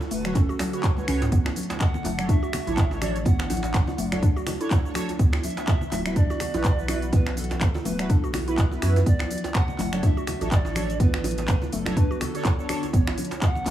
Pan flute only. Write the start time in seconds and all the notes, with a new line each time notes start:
Already playing: A4
0.11 B4
0.36 A4
1.81 F#5
2.29 E5
3.01 D5
3.25 F#5
5.44 E5
6.16 D5
7.13 B4
7.37 A4
7.85 B4
8.09 A4
9.06 D5
9.55 F#5
10.04 E5
10.52 D5
11.00 B4
11.73 A4
11.97 B4
12.21 A4
12.93 C#5
13.42 F#5